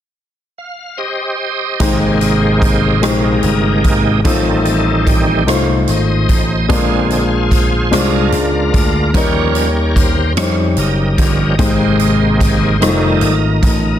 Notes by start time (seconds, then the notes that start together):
0.58 F5
0.97 G4 C5 D#5
1.79 G#1 G#2 C3 G#3 A#3 D#4 G4 C5, kick, closed hi-hat
2.20 D#4 G4 C5, closed hi-hat
2.62 kick, closed hi-hat
3.02 A#1 G#3 D#4 G4 A#4 C5, cross-stick, closed hi-hat
3.43 G1, closed hi-hat
3.84 G#1 A#4, kick, closed hi-hat
4.24 A1 A2 D#3 G3 A3 C4 D#4 F4 A4 C5, kick, closed hi-hat
4.65 closed hi-hat
5.07 G4, kick, closed hi-hat
5.47 C2 A3 D#4 F4 C5 F5, cross-stick, closed hi-hat
5.88 G#1 C5 D#5, closed hi-hat
6.29 A1, kick, closed hi-hat
6.69 A#1 A#2 D3 G#3 C4 D4 F4 G#4 A#4 C5, kick, closed hi-hat
7.10 F4 G#4 C5, closed hi-hat
7.51 kick, closed hi-hat
7.91 C2 G#3 D4 F4 A#4 C5, cross-stick, closed hi-hat
8.32 C#2, closed hi-hat
8.74 D2 A#4, kick, closed hi-hat
9.14 D#2 D#3 F3 G3 C#4 D#4 G4 A#4 C#5, kick, closed hi-hat
9.55 closed hi-hat
9.96 C5, kick, closed hi-hat
10.37 F2 G3 C#4 D#4 C5 F5, cross-stick, closed hi-hat
10.77 F#1 G4 A#4 D#5, closed hi-hat
11.18 G1 F3 G3 C#4, kick, closed hi-hat
11.58 G#1 G#2 C3 G#3 A#3 D#4 G4 C5, kick, closed hi-hat
11.99 D#4 G4 C5, closed hi-hat
12.41 kick, closed hi-hat
12.79 F1 D#3 G3 D#4 F4 A4 A#4 C5, cross-stick, closed hi-hat
12.88 A3
13.21 G#1, closed hi-hat
13.63 A1 A#4, kick, closed hi-hat